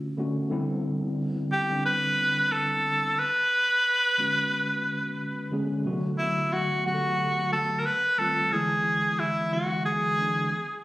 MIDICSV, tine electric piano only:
0, 0, Header, 1, 2, 480
1, 0, Start_track
1, 0, Tempo, 666667
1, 364, Time_signature, 4, 2, 24, 8
1, 7808, End_track
2, 0, Start_track
2, 0, Title_t, "Tine electric piano"
2, 0, Program_c, 0, 4
2, 0, Control_c, 0, 64, 127
2, 0, Note_on_c, 0, 50, 64
2, 0, Note_on_c, 0, 57, 58
2, 0, Note_on_c, 0, 59, 54
2, 0, Note_on_c, 0, 61, 52
2, 0, Note_on_c, 0, 65, 55
2, 0, Note_on_c, 0, 66, 61
2, 125, Note_off_c, 0, 50, 0
2, 125, Note_on_c, 0, 50, 97
2, 130, Note_off_c, 0, 57, 0
2, 130, Note_on_c, 0, 57, 85
2, 133, Note_off_c, 0, 59, 0
2, 133, Note_on_c, 0, 59, 80
2, 136, Note_off_c, 0, 61, 0
2, 136, Note_on_c, 0, 61, 80
2, 142, Note_off_c, 0, 66, 0
2, 142, Note_on_c, 0, 66, 93
2, 321, Note_off_c, 0, 50, 0
2, 323, Note_off_c, 0, 57, 0
2, 325, Note_off_c, 0, 59, 0
2, 326, Note_off_c, 0, 61, 0
2, 329, Note_off_c, 0, 66, 0
2, 359, Note_on_c, 0, 50, 98
2, 365, Note_on_c, 0, 55, 104
2, 368, Note_on_c, 0, 59, 99
2, 371, Note_on_c, 0, 60, 100
2, 373, Control_c, 0, 64, 0
2, 376, Note_off_c, 0, 65, 0
2, 377, Note_on_c, 0, 64, 125
2, 518, Control_c, 0, 64, 127
2, 1027, Note_off_c, 0, 50, 0
2, 1030, Note_off_c, 0, 55, 0
2, 1032, Note_off_c, 0, 59, 0
2, 1034, Note_off_c, 0, 60, 0
2, 1037, Note_off_c, 0, 64, 0
2, 1225, Note_on_c, 0, 50, 71
2, 1228, Note_on_c, 0, 55, 63
2, 1231, Note_on_c, 0, 59, 58
2, 1236, Note_on_c, 0, 60, 59
2, 1240, Note_on_c, 0, 62, 78
2, 1968, Note_off_c, 0, 50, 0
2, 1970, Note_off_c, 0, 55, 0
2, 1971, Note_off_c, 0, 59, 0
2, 1974, Note_off_c, 0, 60, 0
2, 1976, Note_off_c, 0, 62, 0
2, 2293, Control_c, 0, 64, 0
2, 2405, Control_c, 0, 64, 127
2, 3010, Note_on_c, 0, 50, 70
2, 3013, Note_on_c, 0, 56, 68
2, 3018, Note_on_c, 0, 59, 72
2, 3021, Note_on_c, 0, 61, 67
2, 3026, Note_on_c, 0, 66, 84
2, 3760, Note_off_c, 0, 50, 0
2, 3761, Note_off_c, 0, 56, 0
2, 3764, Note_off_c, 0, 59, 0
2, 3765, Note_off_c, 0, 61, 0
2, 3768, Note_off_c, 0, 66, 0
2, 3968, Note_on_c, 0, 50, 85
2, 3974, Note_on_c, 0, 56, 82
2, 3979, Note_on_c, 0, 59, 82
2, 3982, Note_on_c, 0, 61, 87
2, 3984, Note_on_c, 0, 68, 91
2, 4162, Note_off_c, 0, 50, 0
2, 4165, Note_off_c, 0, 56, 0
2, 4168, Note_off_c, 0, 59, 0
2, 4170, Note_off_c, 0, 61, 0
2, 4171, Note_off_c, 0, 68, 0
2, 4210, Note_on_c, 0, 48, 87
2, 4214, Note_on_c, 0, 54, 103
2, 4215, Control_c, 0, 64, 0
2, 4217, Note_on_c, 0, 57, 94
2, 4222, Note_on_c, 0, 59, 97
2, 4226, Note_on_c, 0, 66, 119
2, 4255, Note_on_c, 0, 50, 113
2, 4262, Note_off_c, 0, 48, 0
2, 4351, Control_c, 0, 64, 127
2, 4784, Note_off_c, 0, 54, 0
2, 4785, Note_off_c, 0, 57, 0
2, 4788, Note_off_c, 0, 59, 0
2, 4790, Note_off_c, 0, 66, 0
2, 4804, Note_off_c, 0, 50, 0
2, 4933, Note_on_c, 0, 50, 62
2, 4939, Note_on_c, 0, 54, 57
2, 4943, Note_on_c, 0, 57, 56
2, 4945, Note_on_c, 0, 59, 58
2, 4949, Note_on_c, 0, 67, 54
2, 4992, Note_off_c, 0, 67, 0
2, 4997, Note_on_c, 0, 69, 70
2, 5321, Note_off_c, 0, 50, 0
2, 5324, Note_off_c, 0, 54, 0
2, 5326, Note_off_c, 0, 57, 0
2, 5327, Note_off_c, 0, 59, 0
2, 5353, Note_off_c, 0, 69, 0
2, 5411, Note_on_c, 0, 50, 60
2, 5413, Note_on_c, 0, 54, 65
2, 5416, Note_on_c, 0, 57, 63
2, 5422, Note_on_c, 0, 59, 63
2, 5425, Note_on_c, 0, 66, 78
2, 5648, Note_off_c, 0, 50, 0
2, 5649, Note_off_c, 0, 54, 0
2, 5650, Note_off_c, 0, 57, 0
2, 5653, Note_off_c, 0, 59, 0
2, 5654, Control_c, 0, 64, 0
2, 5655, Note_off_c, 0, 66, 0
2, 5771, Control_c, 0, 64, 127
2, 5889, Note_on_c, 0, 51, 69
2, 5893, Note_on_c, 0, 55, 59
2, 5898, Note_on_c, 0, 57, 65
2, 5902, Note_on_c, 0, 60, 62
2, 5906, Note_on_c, 0, 65, 71
2, 6083, Note_off_c, 0, 51, 0
2, 6085, Note_off_c, 0, 55, 0
2, 6087, Note_off_c, 0, 57, 0
2, 6089, Note_off_c, 0, 60, 0
2, 6091, Note_off_c, 0, 65, 0
2, 6125, Note_on_c, 0, 50, 85
2, 6128, Note_on_c, 0, 52, 90
2, 6132, Note_on_c, 0, 56, 89
2, 6133, Control_c, 0, 64, 0
2, 6137, Note_on_c, 0, 59, 77
2, 6141, Note_on_c, 0, 64, 100
2, 6277, Control_c, 0, 64, 127
2, 6700, Note_off_c, 0, 50, 0
2, 6701, Note_off_c, 0, 52, 0
2, 6703, Note_off_c, 0, 56, 0
2, 6706, Note_off_c, 0, 59, 0
2, 6708, Note_off_c, 0, 64, 0
2, 6850, Note_on_c, 0, 50, 63
2, 6857, Note_on_c, 0, 52, 59
2, 6860, Note_on_c, 0, 54, 43
2, 6863, Note_on_c, 0, 59, 56
2, 6869, Note_on_c, 0, 66, 65
2, 6906, Note_on_c, 0, 56, 60
2, 6907, Note_off_c, 0, 54, 0
2, 7240, Note_off_c, 0, 50, 0
2, 7243, Note_off_c, 0, 52, 0
2, 7246, Note_off_c, 0, 59, 0
2, 7249, Note_off_c, 0, 66, 0
2, 7268, Note_off_c, 0, 56, 0
2, 7327, Note_on_c, 0, 50, 69
2, 7335, Note_on_c, 0, 52, 61
2, 7338, Note_on_c, 0, 56, 59
2, 7341, Note_on_c, 0, 59, 66
2, 7345, Note_on_c, 0, 62, 75
2, 7566, Note_off_c, 0, 50, 0
2, 7570, Note_off_c, 0, 52, 0
2, 7571, Note_off_c, 0, 56, 0
2, 7573, Note_off_c, 0, 59, 0
2, 7573, Control_c, 0, 64, 0
2, 7575, Note_off_c, 0, 62, 0
2, 7695, Control_c, 0, 64, 127
2, 7808, End_track
0, 0, End_of_file